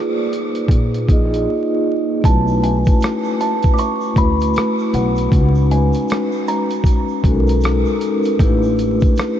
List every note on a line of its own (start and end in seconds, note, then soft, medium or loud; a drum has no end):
0.00 0.25 A#3 medium
0.00 0.25 D#4 medium
0.00 0.26 F4 medium
0.00 0.27 G#4 medium
0.00 2.25 B4 soft
0.00 0.28 C5 loud
0.00 2.25 D5 medium
0.33 closed hi-hat medium
0.55 closed hi-hat soft
0.68 1.05 A#2 loud
0.68 kick medium
0.68 closed hi-hat medium
0.94 closed hi-hat soft
1.06 1.45 A#1 medium
1.06 2.18 A#3 medium
1.06 2.19 D#4 medium
1.06 2.20 F4 medium
1.06 kick medium
1.06 closed hi-hat medium
1.11 2.20 G#4 medium
1.11 2.21 D#5 medium
1.34 closed hi-hat soft
2.22 2.82 B1 loud
2.22 3.71 A3 medium
2.22 3.71 C#4 medium
2.22 3.72 E4 medium
2.22 2.42 A5 medium
2.22 kick loud
2.22 closed hi-hat medium
2.22 shaker medium
2.26 3.73 F#4 medium
2.26 3.74 B4 medium
2.48 shaker soft
2.63 3.42 G#5 medium
2.63 closed hi-hat medium
2.63 shaker soft
2.85 kick loud
2.85 closed hi-hat soft
2.85 shaker medium
3.00 cross-stick loud
3.00 closed hi-hat medium
3.00 shaker medium
3.24 shaker soft
3.40 3.71 A5 loud
3.40 closed hi-hat medium
3.40 shaker medium
3.63 kick medium
3.63 closed hi-hat soft
3.63 shaker soft
3.74 3.78 D6 medium
3.74 shaker medium
3.79 4.18 C#6 loud
3.79 closed hi-hat medium
4.01 shaker medium
4.14 4.52 D2 medium
4.14 5.26 A3 medium
4.14 5.27 C#4 medium
4.14 5.27 E4 medium
4.14 4.96 B5 medium
4.14 kick medium
4.14 closed hi-hat medium
4.19 5.28 F#4 medium
4.19 5.29 B4 medium
4.40 closed hi-hat medium
4.40 shaker medium
4.53 closed hi-hat medium
4.53 shaker medium
4.58 cross-stick loud
4.78 shaker soft
4.93 5.29 B1 medium
4.93 5.73 F#5 medium
4.93 closed hi-hat medium
4.93 shaker soft
5.16 closed hi-hat medium
5.16 shaker soft
5.30 5.90 C#2 loud
5.30 6.78 G#3 medium
5.30 6.79 C#4 medium
5.30 6.80 D#4 medium
5.30 kick loud
5.30 closed hi-hat medium
5.30 shaker medium
5.34 6.81 F#4 medium
5.34 6.81 B4 medium
5.55 shaker soft
5.71 6.50 G#5 medium
5.71 closed hi-hat medium
5.71 shaker soft
5.93 closed hi-hat soft
5.93 shaker medium
6.08 cross-stick loud
6.08 closed hi-hat medium
6.08 shaker medium
6.32 shaker soft
6.47 7.97 A#5 medium
6.47 closed hi-hat medium
6.47 shaker medium
6.70 closed hi-hat soft
6.70 shaker soft
6.84 kick medium
6.84 closed hi-hat medium
6.84 shaker medium
7.08 shaker soft
7.22 7.82 B1 medium
7.22 8.34 G#3 medium
7.22 8.35 C#4 medium
7.22 8.36 D#4 medium
7.22 kick medium
7.22 closed hi-hat medium
7.27 8.36 F#4 medium
7.27 7.34 A4 medium
7.35 8.40 A#4 medium
7.47 closed hi-hat medium
7.47 shaker medium
7.61 closed hi-hat medium
7.61 shaker medium
7.65 cross-stick loud
7.86 shaker medium
8.01 closed hi-hat medium
8.01 shaker soft
8.23 closed hi-hat medium
8.23 shaker medium
8.37 8.98 A1 loud
8.37 9.40 A3 medium
8.37 8.47 C#4 medium
8.37 9.40 E4 medium
8.37 kick loud
8.37 closed hi-hat medium
8.37 shaker medium
8.42 9.40 D4 medium
8.42 9.40 G4 medium
8.42 9.40 B4 loud
8.63 shaker medium
8.78 closed hi-hat medium
8.78 shaker soft
9.00 kick loud
9.00 closed hi-hat soft
9.00 shaker medium
9.16 cross-stick loud
9.16 closed hi-hat medium
9.16 shaker medium